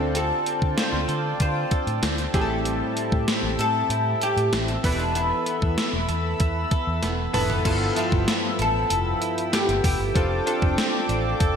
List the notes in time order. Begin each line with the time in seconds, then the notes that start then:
Already playing: D2 D3 C4 D4 F4 A4 C5 D5 G5 A5
0.15 C4 A4, closed hi-hat
0.46 C4, closed hi-hat
0.62 D3, kick
0.77 F4 C5, snare, closed hi-hat
0.93 D2
1.08 D3 A4, closed hi-hat
1.40 D3 F4 C5, kick, closed hi-hat
1.71 A4, kick, closed hi-hat
1.87 A2, closed hi-hat
2.02 D2 C4, snare, closed hi-hat
2.18 closed hi-hat
2.34 A1 A2 G3 C4 E4 G4 G#4 E5, kick, closed hi-hat
2.41 A4
2.65 G3, closed hi-hat
2.97 C4, closed hi-hat
3.12 A2, kick
3.28 E4, snare, closed hi-hat
3.43 A1
3.58 A2 A4, closed hi-hat
3.89 A2 E4, closed hi-hat
4.21 G4 A4, closed hi-hat
4.37 A2, closed hi-hat
4.52 A1 C4, snare, closed hi-hat
4.68 closed hi-hat
4.84 E1 E3 B3 D4 E4 A4 B4 B5 E6, kick, open hi-hat
4.92 C4
4.99 D4
5.15 B3 E4, closed hi-hat
5.46 B3, closed hi-hat
5.62 E2, kick
5.78 E4, snare, closed hi-hat
5.93 E1
6.09 E2 A4, closed hi-hat
6.40 E2 E4, kick, closed hi-hat
6.71 A4, kick, closed hi-hat
6.87 E2
7.02 E1 B3, snare, closed hi-hat
7.33 F1 B3 E4 A4 B4, mid tom, open hi-hat
7.50 floor tom
7.65 G1 G2 F3 B3 E4 F4 A4 G5 B5 E6, kick, closed hi-hat, crash
7.96 F3 B3 E4 F4 A4 E5, closed hi-hat
8.12 G1, kick
8.27 B3, snare, closed hi-hat
8.58 A1 E4 A4, closed hi-hat
8.90 F1 A4, closed hi-hat
9.21 E4, closed hi-hat
9.38 closed hi-hat
9.52 B3 G4, snare, closed hi-hat
9.69 G1, closed hi-hat
9.84 F1 E4 G4, kick, open hi-hat
10.00 G1
10.15 F1 F3 C4 D4 F4 A4 A5 D6, kick, closed hi-hat
10.46 C4 D4 F4 A4, closed hi-hat
10.62 F1, kick
10.77 C4, snare, closed hi-hat
11.09 A1 D4, closed hi-hat
11.40 F1 A4, kick, closed hi-hat